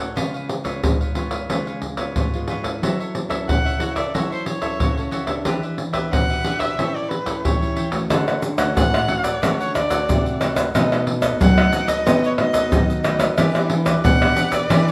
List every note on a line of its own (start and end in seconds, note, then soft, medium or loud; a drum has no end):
0.00 0.15 A2 medium
0.00 0.16 A4 soft
0.00 0.16 C#5 soft
0.00 0.15 F#5 soft
0.16 0.81 C#3 medium
0.16 0.62 G#3 soft
0.16 0.62 B3 medium
0.16 0.32 F4 medium
0.16 0.63 F4 soft
0.16 0.33 B4 medium
0.16 0.33 C#5 medium
0.16 0.32 F5 medium
0.16 pandeiro medium
0.16 surdo medium
0.34 0.48 B4 soft
0.34 0.48 C#5 soft
0.34 0.48 F5 soft
0.34 pandeiro soft
0.49 muted cavaquinho stroke soft
0.49 pandeiro medium
0.64 1.11 G#3 soft
0.64 1.11 B3 soft
0.64 1.11 F4 medium
0.64 0.99 B4 soft
0.64 0.98 C#5 medium
0.64 0.98 F5 medium
0.64 pandeiro medium
0.64 surdo soft
0.83 1.47 G#2 medium
0.83 pandeiro medium
0.83 surdo medium
1.00 1.15 B4 soft
1.00 1.16 C#5 soft
1.00 1.16 F5 soft
1.00 pandeiro soft
1.15 1.45 G#3 soft
1.15 1.45 B3 soft
1.15 1.32 F4 soft
1.15 1.45 F4 medium
1.15 1.32 B4 soft
1.15 1.31 C#5 medium
1.15 1.30 F5 medium
1.15 pandeiro soft
1.31 1.49 B4 soft
1.31 1.48 C#5 medium
1.31 1.48 F5 medium
1.31 pandeiro medium
1.31 surdo soft
1.50 2.13 C#3 medium
1.50 1.95 G#3 soft
1.50 1.95 B3 soft
1.50 1.65 F4 medium
1.50 1.95 F4 medium
1.50 1.66 B4 medium
1.50 1.66 C#5 medium
1.50 1.66 F5 medium
1.50 pandeiro medium
1.50 surdo medium
1.67 1.82 B4 soft
1.67 1.82 C#5 soft
1.67 1.82 F5 soft
1.67 pandeiro soft
1.82 muted cavaquinho stroke soft
1.82 pandeiro soft
1.82 surdo soft
1.97 2.27 G#3 medium
1.97 2.27 B3 medium
1.97 2.27 F4 medium
1.97 2.15 B4 soft
1.97 2.15 C#5 medium
1.97 2.14 F5 medium
1.97 pandeiro medium
1.97 surdo soft
2.16 2.79 G#2 medium
2.16 2.48 F4 soft
2.16 2.49 B4 soft
2.16 2.49 C#5 soft
2.16 2.49 F5 soft
2.16 pandeiro medium
2.16 surdo medium
2.34 2.61 G#3 medium
2.34 2.62 B3 medium
2.34 2.62 F4 medium
2.34 pandeiro soft
2.48 2.65 F4 medium
2.48 2.65 B4 medium
2.48 2.63 C#5 medium
2.48 2.62 F5 medium
2.48 pandeiro medium
2.63 3.26 C#4 medium
2.63 3.26 E4 medium
2.63 3.26 A4 medium
2.63 2.81 B4 soft
2.63 2.81 C#5 soft
2.63 2.80 F5 soft
2.63 pandeiro medium
2.63 surdo soft
2.82 3.45 F#3 medium
2.82 2.98 F#4 medium
2.82 2.98 A4 medium
2.82 2.99 C#5 medium
2.82 2.99 E5 medium
2.82 pandeiro medium
2.82 surdo soft
3.00 3.14 A4 soft
3.00 3.14 C#5 soft
3.00 3.14 E5 soft
3.00 pandeiro soft
3.15 muted cavaquinho stroke soft
3.15 pandeiro medium
3.29 3.75 C#4 medium
3.29 3.75 E4 medium
3.29 3.75 A4 medium
3.29 3.64 A4 soft
3.29 3.63 C#5 medium
3.29 3.63 E5 medium
3.29 pandeiro medium
3.29 surdo soft
3.48 4.11 C#3 medium
3.48 3.95 F#5 medium
3.48 pandeiro medium
3.48 surdo medium
3.65 3.80 A4 soft
3.65 3.80 C#5 soft
3.65 3.80 E5 soft
3.65 pandeiro soft
3.79 4.00 C#4 soft
3.79 4.00 E4 medium
3.79 3.96 F#4 soft
3.79 4.00 A4 medium
3.79 3.96 A4 soft
3.79 3.95 C#5 soft
3.79 3.94 E5 medium
3.79 pandeiro medium
3.96 4.13 A4 medium
3.96 4.13 C#5 medium
3.96 4.12 D5 medium
3.96 4.12 E5 medium
3.96 pandeiro medium
3.96 surdo soft
4.14 4.78 F#3 medium
4.14 4.59 C#4 soft
4.14 4.59 E4 soft
4.14 4.30 F#4 medium
4.14 4.30 A4 medium
4.14 4.59 A4 medium
4.14 4.31 C#5 medium
4.14 4.29 E5 medium
4.14 pandeiro medium
4.14 surdo soft
4.30 4.45 A4 soft
4.30 4.47 C5 medium
4.30 4.46 C#5 soft
4.30 4.46 E5 soft
4.30 pandeiro soft
4.46 5.10 C#5 medium
4.46 muted cavaquinho stroke soft
4.46 pandeiro medium
4.61 4.91 C#4 medium
4.61 4.91 E4 soft
4.61 4.91 A4 medium
4.61 4.79 A4 soft
4.61 4.79 C#5 medium
4.61 4.78 E5 medium
4.61 pandeiro medium
4.61 surdo soft
4.80 5.44 C#3 medium
4.80 5.10 F#4 soft
4.80 5.11 A4 soft
4.80 5.12 C#5 soft
4.80 5.12 E5 soft
4.80 pandeiro medium
4.80 surdo medium
4.97 5.25 C#4 medium
4.97 5.26 E4 medium
4.97 5.26 A4 medium
4.97 pandeiro soft
5.11 5.28 F#4 medium
5.11 5.28 A4 medium
5.11 5.26 C#5 medium
5.11 5.25 E5 medium
5.11 pandeiro soft
5.27 5.90 B3 medium
5.27 5.91 D4 medium
5.27 5.91 G4 medium
5.27 5.45 A4 soft
5.27 5.44 C#5 soft
5.27 5.44 E5 soft
5.27 pandeiro medium
5.27 surdo soft
5.45 6.10 E3 medium
5.45 5.61 D4 medium
5.45 5.62 G4 medium
5.45 5.62 B4 medium
5.45 5.62 E5 medium
5.45 pandeiro medium
5.45 surdo soft
5.63 5.78 G4 soft
5.63 5.78 B4 soft
5.63 5.78 E5 soft
5.63 pandeiro soft
5.78 muted cavaquinho stroke soft
5.78 pandeiro medium
5.93 6.39 B3 medium
5.93 6.40 D4 medium
5.93 6.40 G4 medium
5.93 6.27 G4 soft
5.93 6.27 B4 medium
5.93 6.26 E5 medium
5.93 pandeiro medium
5.93 surdo soft
6.13 6.76 B2 medium
6.13 6.61 F#5 medium
6.13 pandeiro medium
6.13 surdo medium
6.30 6.44 G4 soft
6.30 6.45 B4 soft
6.30 6.45 E5 soft
6.30 pandeiro soft
6.44 6.73 B3 soft
6.44 6.60 D4 soft
6.44 6.73 D4 soft
6.44 6.60 G4 soft
6.44 6.74 G4 medium
6.44 6.59 B4 soft
6.44 6.58 E5 medium
6.44 pandeiro medium
6.59 6.77 G4 soft
6.59 6.77 B4 medium
6.59 6.76 E5 medium
6.59 6.97 E5 medium
6.59 pandeiro medium
6.59 surdo soft
6.77 7.41 A2 medium
6.77 7.10 G3 soft
6.77 7.10 C#4 soft
6.77 6.93 E4 medium
6.77 7.10 E4 soft
6.77 6.94 A4 medium
6.77 6.94 C#5 medium
6.77 6.93 G5 medium
6.77 pandeiro medium
6.77 surdo soft
6.94 7.09 A4 soft
6.94 7.10 C#5 soft
6.94 7.11 D5 medium
6.94 7.10 G5 soft
6.94 pandeiro soft
7.09 7.47 B4 medium
7.09 muted cavaquinho stroke soft
7.09 pandeiro medium
7.26 7.55 G3 soft
7.26 7.55 C#4 medium
7.26 7.55 E4 medium
7.26 7.43 A4 soft
7.26 7.43 C#5 medium
7.26 7.42 G5 medium
7.26 pandeiro medium
7.26 surdo soft
7.44 8.08 E3 medium
7.44 7.74 E4 soft
7.44 7.76 A4 soft
7.44 7.95 C#5 medium
7.44 7.76 C#5 soft
7.44 7.77 G5 soft
7.44 pandeiro medium
7.44 surdo medium
7.62 7.89 G3 soft
7.62 7.90 C#4 medium
7.62 7.90 E4 medium
7.62 pandeiro soft
7.76 7.92 E4 medium
7.76 7.92 A4 medium
7.76 7.92 C#5 medium
7.76 7.90 G5 medium
7.76 pandeiro medium
7.91 8.54 A3 medium
7.91 8.54 C#4 medium
7.91 8.54 F#4 medium
7.91 8.09 A4 soft
7.91 8.09 C#5 soft
7.91 8.08 G5 soft
7.91 pandeiro medium
7.91 surdo soft
8.10 8.73 D3 medium
8.10 8.26 D4 medium
8.10 8.26 A4 medium
8.10 8.26 C#5 medium
8.10 8.26 F#5 medium
8.10 pandeiro medium
8.10 tamborim medium
8.10 shaker medium
8.10 surdo medium
8.28 8.42 A4 soft
8.28 8.42 C#5 soft
8.28 8.43 F#5 soft
8.28 pandeiro soft
8.28 tamborim medium
8.28 shaker soft
8.42 muted cavaquinho stroke soft
8.42 pandeiro medium
8.42 shaker medium
8.58 9.04 A3 medium
8.58 9.04 C#4 medium
8.58 9.04 F#4 medium
8.58 8.92 A4 medium
8.58 8.92 C#5 medium
8.58 8.91 F#5 medium
8.58 pandeiro medium
8.58 tamborim medium
8.58 shaker medium
8.58 surdo soft
8.76 9.40 A2 medium
8.76 9.25 F#5 medium
8.76 pandeiro medium
8.76 shaker medium
8.76 surdo loud
8.94 9.08 A4 soft
8.94 9.09 C#5 soft
8.94 9.09 F#5 soft
8.94 pandeiro soft
8.94 tamborim medium
8.94 shaker soft
9.08 9.29 A3 soft
9.08 9.29 C#4 medium
9.08 9.24 D4 soft
9.08 9.29 F#4 medium
9.08 9.24 A4 soft
9.08 9.24 C#5 soft
9.08 9.23 F#5 medium
9.08 pandeiro medium
9.24 9.41 A4 soft
9.24 9.41 C#5 medium
9.24 9.58 D5 medium
9.24 9.40 F#5 medium
9.24 pandeiro medium
9.24 shaker medium
9.24 surdo soft
9.42 10.06 D3 soft
9.42 9.74 A3 medium
9.42 9.74 C#4 soft
9.42 9.58 D4 medium
9.42 9.74 F#4 medium
9.42 9.58 A4 medium
9.42 9.59 C#5 medium
9.42 9.59 F#5 medium
9.42 pandeiro medium
9.42 tamborim medium
9.42 shaker medium
9.42 surdo medium
9.60 9.74 A4 soft
9.60 9.74 C#5 medium
9.60 9.74 C#5 soft
9.60 9.75 F#5 soft
9.60 pandeiro soft
9.60 shaker soft
9.75 10.37 D5 medium
9.75 muted cavaquinho stroke soft
9.75 pandeiro medium
9.75 tamborim medium
9.75 shaker medium
9.75 surdo soft
9.90 10.36 A3 medium
9.90 10.36 F#4 medium
9.90 10.08 A4 medium
9.90 10.07 C#5 medium
9.90 10.07 F#5 medium
9.90 pandeiro medium
9.90 shaker medium
9.90 surdo soft
10.09 10.72 A2 medium
10.09 10.65 C3 medium
10.09 10.40 D4 soft
10.09 10.41 A4 soft
10.09 10.42 F#5 medium
10.09 pandeiro medium
10.09 shaker medium
10.09 surdo medium
10.26 pandeiro soft
10.26 shaker soft
10.40 10.69 A3 medium
10.40 10.69 C#4 soft
10.40 10.57 D4 medium
10.40 10.69 F#4 medium
10.40 10.57 A4 medium
10.40 10.57 C#5 medium
10.40 10.55 F#5 medium
10.40 pandeiro medium
10.40 tamborim medium
10.40 shaker medium
10.56 10.74 A4 soft
10.56 10.73 C#5 soft
10.56 10.73 F#5 soft
10.56 pandeiro medium
10.56 tamborim medium
10.56 shaker medium
10.56 surdo soft
10.75 11.38 B2 medium
10.75 10.87 A3 soft
10.75 10.90 D#4 medium
10.75 10.87 D#4 medium
10.75 10.87 F#4 medium
10.75 10.90 A4 medium
10.75 10.91 B4 medium
10.75 10.91 D#5 medium
10.75 pandeiro medium
10.75 tamborim medium
10.75 shaker medium
10.75 surdo medium
10.92 11.53 A3 medium
10.92 11.53 D#4 medium
10.92 11.53 F#4 medium
10.92 11.06 A4 soft
10.92 11.07 B4 soft
10.92 11.07 D#5 medium
10.92 pandeiro soft
10.92 tamborim medium
10.92 shaker soft
11.07 muted cavaquinho stroke soft
11.07 pandeiro medium
11.22 11.56 A4 medium
11.22 11.55 B4 medium
11.22 11.55 D#5 medium
11.22 pandeiro medium
11.22 tamborim medium
11.22 shaker medium
11.22 surdo soft
11.40 11.68 F#3 medium
11.40 11.90 F#5 medium
11.40 pandeiro medium
11.40 shaker medium
11.40 surdo loud
11.57 12.02 A3 medium
11.57 12.02 D#4 medium
11.57 12.02 F#4 medium
11.57 11.72 A4 soft
11.57 11.72 B4 soft
11.57 11.72 D#5 soft
11.57 pandeiro soft
11.57 tamborim medium
11.57 shaker soft
11.72 11.88 D#4 soft
11.72 11.88 A4 soft
11.72 11.87 B4 medium
11.72 11.86 D#5 medium
11.72 pandeiro medium
11.72 shaker medium
11.87 12.05 A4 medium
11.87 12.04 B4 medium
11.87 12.04 D#5 medium
11.87 12.22 D#5 medium
11.87 pandeiro medium
11.87 shaker medium
11.87 surdo soft
12.06 12.70 B2 soft
12.06 12.27 A3 medium
12.06 12.62 B3 loud
12.06 12.21 D#4 medium
12.06 12.27 D#4 soft
12.06 12.27 F#4 medium
12.06 12.22 A4 medium
12.06 12.22 B4 medium
12.06 12.22 D#5 medium
12.06 pandeiro medium
12.06 tamborim medium
12.06 shaker medium
12.06 surdo medium
12.23 12.37 A4 soft
12.23 12.38 B4 soft
12.23 12.33 C#5 medium
12.23 12.38 D#5 soft
12.23 pandeiro soft
12.23 shaker soft
12.38 12.67 A3 medium
12.38 12.67 D#4 medium
12.38 12.67 F#4 medium
12.38 13.02 D#5 medium
12.38 muted cavaquinho stroke soft
12.38 pandeiro medium
12.38 tamborim medium
12.53 12.71 A4 medium
12.53 12.70 B4 medium
12.53 12.70 D#5 medium
12.53 pandeiro medium
12.53 shaker medium
12.53 surdo soft
12.71 13.29 D#3 medium
12.71 13.36 F#3 medium
12.71 12.93 A3 soft
12.71 13.03 D#4 soft
12.71 12.93 D#4 medium
12.71 12.93 F#4 medium
12.71 13.04 A4 soft
12.71 13.04 B4 soft
12.71 13.05 D#5 medium
12.71 pandeiro medium
12.71 shaker medium
12.71 surdo medium
12.90 pandeiro soft
12.90 shaker soft
13.04 13.27 A3 medium
13.04 13.20 D#4 medium
13.04 13.27 D#4 medium
13.04 13.27 F#4 medium
13.04 13.20 A4 medium
13.04 13.19 B4 medium
13.04 13.18 D#5 medium
13.04 pandeiro medium
13.04 tamborim medium
13.04 shaker medium
13.19 13.37 A4 soft
13.19 13.36 B4 soft
13.19 13.36 D#5 soft
13.19 pandeiro medium
13.19 tamborim medium
13.19 shaker medium
13.19 surdo soft
13.37 14.02 E3 medium
13.37 13.50 B3 medium
13.37 13.51 D4 medium
13.37 13.53 E4 medium
13.37 13.54 G4 medium
13.37 13.51 G4 medium
13.37 13.54 B4 medium
13.37 13.54 D5 medium
13.37 pandeiro medium
13.37 tamborim medium
13.37 shaker medium
13.37 surdo medium
13.55 14.16 B3 medium
13.55 14.17 D4 medium
13.55 13.69 G4 soft
13.55 14.17 G4 medium
13.55 13.70 B4 soft
13.55 13.70 D5 medium
13.55 pandeiro soft
13.55 tamborim medium
13.55 shaker soft
13.70 muted cavaquinho stroke soft
13.70 pandeiro medium
13.85 14.19 G4 medium
13.85 14.19 B4 medium
13.85 14.18 D5 medium
13.85 pandeiro medium
13.85 tamborim medium
13.85 shaker medium
13.85 surdo soft
14.04 14.67 B2 medium
14.04 14.55 F#5 loud
14.04 pandeiro medium
14.04 shaker medium
14.04 surdo loud
14.21 14.65 B3 medium
14.21 14.65 D4 medium
14.21 14.66 G4 medium
14.21 14.34 G4 soft
14.21 14.35 B4 soft
14.21 14.36 D5 soft
14.21 pandeiro soft
14.21 tamborim medium
14.21 shaker soft
14.34 14.51 E4 soft
14.34 14.51 G4 medium
14.34 14.50 B4 medium
14.34 14.49 D5 medium
14.34 pandeiro medium
14.34 shaker medium
14.50 14.68 G4 medium
14.50 14.68 B4 medium
14.50 14.67 D5 medium
14.50 14.92 D5 medium
14.50 pandeiro medium
14.50 shaker medium
14.50 surdo soft
14.69 14.92 E3 medium
14.69 14.92 B3 medium
14.69 14.92 D4 medium
14.69 14.85 E4 medium
14.69 14.86 G4 medium
14.69 14.92 G4 medium
14.69 14.86 B4 medium
14.69 14.85 D5 medium
14.69 pandeiro medium
14.69 tamborim medium
14.69 shaker medium
14.69 surdo medium
14.86 14.92 G4 soft
14.86 14.92 B4 soft
14.86 14.92 D5 soft
14.86 pandeiro soft
14.86 shaker soft